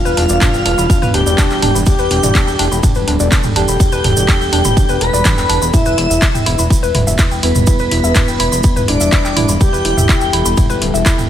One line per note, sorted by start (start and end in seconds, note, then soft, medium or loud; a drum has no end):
0.00 5.70 G3 medium
0.00 5.70 B3 medium
0.00 5.70 D4 medium
0.00 1.05 F4 loud
0.00 1.83 B4 medium
0.00 1.05 F5 loud
0.05 0.14 E1 medium
0.05 0.11 B4 loud
0.05 shaker soft
0.17 0.27 E1 loud
0.17 0.23 D4 medium
0.17 open hi-hat loud
0.29 0.39 E1 medium
0.29 0.38 D5 medium
0.29 shaker medium
0.41 0.51 E1 loud
0.41 0.45 D4 loud
0.41 kick loud
0.41 clap loud
0.41 mid tom loud
0.41 ride medium
0.41 shaker medium
0.54 0.63 E1 medium
0.54 0.60 G5 medium
0.54 shaker soft
0.66 0.75 E1 medium
0.66 0.69 D4 loud
0.66 open hi-hat loud
0.78 0.87 E1 medium
0.78 0.82 B5 medium
0.78 shaker medium
0.90 0.99 E1 loud
0.90 0.96 D4 medium
0.90 kick loud
0.90 ride medium
0.90 shaker medium
1.02 1.11 E1 medium
1.02 1.08 B4 loud
1.02 mid tom loud
1.02 shaker soft
1.14 1.23 D1 loud
1.14 1.20 D4 medium
1.14 1.77 G4 loud
1.14 1.77 G5 loud
1.14 open hi-hat loud
1.26 1.35 E1 medium
1.26 1.35 D5 medium
1.26 shaker medium
1.38 1.48 E1 loud
1.38 1.42 D4 loud
1.38 kick loud
1.38 clap loud
1.38 ride medium
1.38 shaker medium
1.50 1.60 E1 medium
1.50 1.54 G5 medium
1.50 clap soft
1.50 shaker soft
1.62 1.72 E1 loud
1.62 1.66 D4 loud
1.62 mid tom medium
1.62 open hi-hat loud
1.75 1.84 E1 medium
1.75 1.78 B5 medium
1.75 shaker medium
1.86 1.96 E1 loud
1.86 1.93 D4 medium
1.86 2.74 G4 loud
1.86 5.70 A4 medium
1.86 2.74 G5 loud
1.86 kick loud
1.86 ride medium
1.86 shaker medium
1.99 2.08 E1 medium
1.99 2.05 B4 loud
1.99 shaker soft
2.11 2.20 E1 loud
2.11 2.17 D4 medium
2.11 open hi-hat loud
2.23 2.32 E1 medium
2.23 2.32 D5 medium
2.23 mid tom loud
2.23 shaker medium
2.35 2.44 E1 loud
2.35 2.39 D4 loud
2.35 kick loud
2.35 clap loud
2.35 ride medium
2.35 shaker medium
2.47 2.56 E1 medium
2.47 2.53 G5 medium
2.47 shaker soft
2.59 2.69 E1 loud
2.59 2.63 D4 loud
2.59 open hi-hat loud
2.72 2.81 E1 medium
2.72 2.75 B5 medium
2.72 shaker medium
2.83 2.90 D4 medium
2.83 kick loud
2.83 mid tom loud
2.83 ride medium
2.83 shaker medium
2.95 3.05 E1 medium
2.95 3.02 B4 loud
2.95 shaker soft
3.07 3.17 D1 medium
3.07 3.14 D4 medium
3.07 open hi-hat loud
3.20 3.29 E1 medium
3.20 3.29 D5 medium
3.20 shaker medium
3.32 3.41 E1 loud
3.32 3.35 D4 loud
3.32 kick loud
3.32 clap loud
3.32 ride medium
3.32 shaker medium
3.43 3.53 E1 medium
3.43 3.48 G5 medium
3.43 mid tom medium
3.43 shaker soft
3.56 3.65 E1 loud
3.56 3.60 D4 loud
3.56 5.02 G4 loud
3.56 5.03 G5 loud
3.56 open hi-hat loud
3.68 3.77 E1 medium
3.68 3.72 B5 medium
3.68 shaker medium
3.80 3.89 E1 loud
3.80 3.86 D4 medium
3.80 kick loud
3.80 ride medium
3.80 shaker medium
3.92 4.01 E1 medium
3.92 3.98 B4 loud
3.92 shaker soft
4.04 4.14 E1 loud
4.04 4.10 D4 medium
4.04 mid tom loud
4.04 open hi-hat loud
4.17 4.26 E1 medium
4.17 4.26 D5 medium
4.17 shaker medium
4.28 4.38 E1 loud
4.28 4.32 D4 loud
4.28 kick loud
4.28 clap loud
4.28 ride medium
4.28 shaker medium
4.41 4.50 E1 medium
4.41 4.47 G5 medium
4.41 shaker soft
4.53 4.62 E1 medium
4.53 4.56 D4 loud
4.53 open hi-hat loud
4.65 4.74 E1 medium
4.65 4.69 B5 medium
4.65 mid tom medium
4.65 shaker medium
4.77 4.86 E1 loud
4.77 4.83 D4 medium
4.77 kick loud
4.77 ride medium
4.77 shaker medium
4.89 4.98 E1 medium
4.89 4.95 B4 loud
4.89 shaker soft
5.01 5.10 E1 medium
5.01 5.07 D4 medium
5.01 5.64 B4 loud
5.01 5.64 B5 loud
5.01 open hi-hat loud
5.13 5.22 E1 medium
5.13 5.22 D5 medium
5.13 shaker medium
5.25 5.35 E2 loud
5.25 5.29 D4 loud
5.25 kick loud
5.25 clap loud
5.25 mid tom loud
5.25 ride medium
5.25 shaker medium
5.38 5.47 E1 medium
5.38 5.41 G5 medium
5.38 clap soft
5.38 shaker soft
5.49 5.59 E1 medium
5.49 5.53 D4 loud
5.49 open hi-hat loud
5.62 5.71 E1 medium
5.62 5.65 B5 medium
5.62 shaker medium
5.74 5.83 E1 loud
5.74 11.29 G3 medium
5.74 11.29 B3 medium
5.74 5.80 E4 medium
5.74 6.61 E4 loud
5.74 11.29 E4 medium
5.74 9.57 B4 medium
5.74 6.61 E5 loud
5.74 kick loud
5.74 mid tom loud
5.74 ride medium
5.74 shaker medium
5.86 5.95 E1 medium
5.86 5.92 B4 loud
5.86 shaker soft
5.98 6.07 E1 loud
5.98 6.04 E4 medium
5.98 open hi-hat loud
6.10 6.19 E1 medium
6.10 6.19 E5 medium
6.10 shaker medium
6.22 6.31 E1 loud
6.22 6.26 E4 loud
6.22 kick loud
6.22 clap loud
6.22 ride medium
6.22 shaker medium
6.34 6.43 E1 medium
6.34 6.40 G5 medium
6.34 mid tom medium
6.34 shaker soft
6.46 6.56 E1 medium
6.46 6.50 E4 loud
6.46 open hi-hat loud
6.58 6.68 E1 medium
6.58 6.62 B5 medium
6.58 shaker medium
6.70 6.77 E4 medium
6.70 kick loud
6.70 ride medium
6.70 shaker medium
6.83 6.92 E1 medium
6.83 6.89 B4 loud
6.83 shaker soft
6.95 7.04 D1 medium
6.95 7.01 E4 medium
6.95 mid tom loud
6.95 open hi-hat loud
7.07 7.16 E1 medium
7.07 7.16 E5 medium
7.07 shaker medium
7.19 7.28 E1 loud
7.19 7.23 E4 loud
7.19 kick loud
7.19 clap loud
7.19 ride medium
7.19 shaker medium
7.31 7.40 E1 medium
7.31 7.35 G5 medium
7.31 shaker soft
7.43 7.52 E1 loud
7.43 8.79 B3 loud
7.43 7.47 E4 loud
7.43 8.79 B4 loud
7.43 open hi-hat loud
7.55 7.64 E1 medium
7.55 7.59 B5 medium
7.55 mid tom loud
7.55 shaker medium
7.67 7.77 E1 loud
7.67 7.73 E4 medium
7.67 kick loud
7.67 ride medium
7.67 shaker medium
7.79 7.89 E1 medium
7.79 7.86 B4 loud
7.79 shaker soft
7.91 8.01 E1 loud
7.91 7.98 E4 medium
7.91 open hi-hat loud
8.04 8.13 E1 medium
8.04 8.13 E5 medium
8.04 shaker medium
8.15 8.25 E1 loud
8.15 8.19 E4 loud
8.15 kick loud
8.15 clap loud
8.15 mid tom medium
8.15 ride medium
8.15 shaker medium
8.28 8.37 E1 medium
8.28 8.34 G5 medium
8.28 shaker soft
8.40 8.49 E1 medium
8.40 8.43 E4 loud
8.40 open hi-hat loud
8.52 8.61 E1 medium
8.52 8.56 B5 medium
8.52 shaker medium
8.63 8.73 E1 loud
8.63 8.70 E4 medium
8.63 kick loud
8.63 ride medium
8.63 shaker medium
8.76 8.85 E1 medium
8.76 8.82 B4 loud
8.76 mid tom medium
8.76 shaker soft
8.88 8.98 D1 medium
8.88 9.51 D4 loud
8.88 8.94 E4 medium
8.88 9.51 D5 loud
8.88 open hi-hat loud
9.00 9.10 E1 medium
9.00 9.09 E5 medium
9.00 shaker medium
9.12 9.16 E4 loud
9.12 kick loud
9.12 clap loud
9.12 ride medium
9.12 shaker medium
9.25 9.34 E1 medium
9.25 9.28 G5 medium
9.25 clap soft
9.25 shaker soft
9.36 9.46 E1 loud
9.36 9.40 E4 loud
9.36 mid tom medium
9.36 open hi-hat loud
9.49 9.58 E1 medium
9.49 9.52 B5 medium
9.49 shaker medium
9.61 9.70 E1 loud
9.61 9.67 E4 medium
9.61 10.48 G4 loud
9.61 11.29 A4 medium
9.61 10.48 G5 loud
9.61 kick loud
9.61 ride medium
9.61 shaker medium
9.73 9.82 E1 medium
9.73 9.79 B4 loud
9.73 shaker soft
9.85 9.94 E1 loud
9.85 9.91 E4 medium
9.85 open hi-hat loud
9.97 10.06 E1 medium
9.97 10.06 E5 medium
9.97 mid tom medium
9.97 shaker medium
10.09 10.13 E4 loud
10.09 kick loud
10.09 clap loud
10.09 ride medium
10.09 shaker medium
10.21 10.30 E1 medium
10.21 10.27 G5 medium
10.21 shaker soft
10.33 10.43 E1 loud
10.33 10.37 E4 loud
10.33 open hi-hat loud
10.45 10.55 E1 medium
10.45 10.49 B5 medium
10.45 shaker medium
10.57 10.67 E1 loud
10.57 10.64 E4 medium
10.57 kick loud
10.57 mid tom medium
10.57 ride medium
10.57 shaker medium
10.70 10.79 E1 medium
10.70 10.76 B4 loud
10.70 shaker soft
10.82 10.91 D1 loud
10.82 10.88 E4 medium
10.82 open hi-hat loud
10.94 11.03 E1 medium
10.94 11.03 E5 medium
10.94 shaker medium
11.06 11.09 E4 loud
11.06 kick loud
11.06 clap loud
11.06 ride medium
11.06 shaker medium
11.18 11.27 E1 medium
11.18 11.22 G5 medium
11.18 mid tom medium
11.18 shaker soft